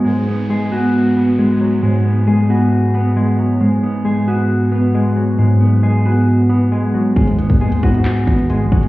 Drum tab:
HH |----------------|----------------|----------------|----------------|
CP |----------------|----------------|----------------|----------------|
BD |----------------|----------------|----------------|----------------|

HH |xxxxxxxxxxxxx--x|
CP |--------x-------|
BD |o--o--o---o---o-|